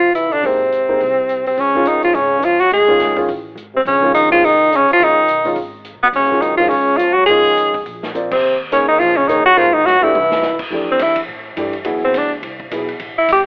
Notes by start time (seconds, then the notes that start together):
Already playing: C2 F3 F4
0.13 E3 E4, closed hi-hat
0.31 D3 D4, open hi-hat
0.42 G#1 C3 A#3 C4 D#4 G#4 C5, kick, open hi-hat
0.72 closed hi-hat
0.89 A#3 D#4 G#4 C5
1.00 C2, kick, open hi-hat
1.29 closed hi-hat
1.46 C3 C4, open hi-hat
1.57 C#2 C#3 C#4, kick, open hi-hat
1.75 D#3 G#3 C#4 F4
1.85 D#3 D#4, closed hi-hat
2.02 C2 F3 F4, open hi-hat
2.14 G#1 C#3 C#4, kick, open hi-hat
2.42 F3 F4, closed hi-hat
2.60 F#3 F#4, open hi-hat
2.71 F1 G#3 G#4, kick, open hi-hat
2.88 D#3 G#3 C#4 F4
3.00 snare, closed hi-hat
3.16 D#3 G#3 C#4 F4, kick, open hi-hat
3.28 A1, kick, open hi-hat
3.55 G#1, closed hi-hat
3.74 C3 C4
3.85 A#1 C#3 C#4, kick, open hi-hat
4.02 D#3 G#3 C#4 F4
4.15 D#3 D#4, closed hi-hat
4.31 D#3 F3 G#3 C#4 F4 G#4, open hi-hat
4.43 F1 D#3 D#4, kick, open hi-hat
4.72 C#3 C#4, closed hi-hat
4.87 F3, muted upright bass stroke, open hi-hat
4.93 F4
4.99 C#2 D#3 G#3 C#4 F4, kick, open hi-hat
5.04 D#4
5.27 B1, closed hi-hat
5.45 D#3 G#3 C#4 F4, open hi-hat
5.56 G#1, kick, open hi-hat
5.85 closed hi-hat
5.93 B1
6.02 G#1 B2 B3
6.13 F#1 C#3 C#4, kick, open hi-hat
6.31 D#3 G#3 C#4 F4
6.41 D#3 D#4, closed hi-hat
6.57 D#3 F3 G#3 C#4 F4, open hi-hat
6.69 C#2 C#3 C#4, kick, open hi-hat
6.97 F3 F4, closed hi-hat
7.13 F#3 F#4
7.26 F2 D#3 G#3 C#4 F4 G#4, kick, open hi-hat
7.58 closed hi-hat
7.75 kick, open hi-hat
7.86 A#1, kick, open hi-hat
8.03 snare
8.15 C4 F4 A#4 D5, closed hi-hat
8.32 C3 C4, kick, crash
8.43 D#2
8.72 C#3 A#3 C#4 D#4 G#4 C#5, closed hi-hat
8.88 D#3 D#4, muted upright bass stroke
8.99 A#1 F3 F4, kick, open hi-hat
9.17 C#3 C#4
9.28 D#3 A#3 D#4 G#4 C#5, closed hi-hat
9.45 F#3 F#4
9.57 G#1 F3 A#3 D#4 F4 G#4 C5, kick, open hi-hat
9.74 D#3 D#4
9.85 F#3 F#4, snare
10.01 E3 A3 D4 E4 G4, muted upright bass stroke
10.13 C2, mid tom
10.31 snare
10.42 snare
10.58 muted upright bass stroke, kick, crash
10.70 F2 E3 A3 D4 G4, kick
10.91 C4
10.99 E2 E4, kick, snare, hi-hat pedal, ride
11.16 kick, ride
11.28 A2, kick
11.56 G2 E3 A3 D4 G4, kick, hi-hat pedal, ride
11.73 ride
11.85 E2 F#3 B3 E4 G#4, kick, ride
12.05 C4
12.14 D2, kick, hi-hat pedal, ride
12.18 D4
12.43 C2, kick, ride
12.60 kick
12.71 B1 F#3 B3 E4 G#4, kick, hi-hat pedal, ride
12.88 ride
12.99 A1, kick, ride
13.18 E4
13.28 G1 G4, kick, hi-hat pedal, ride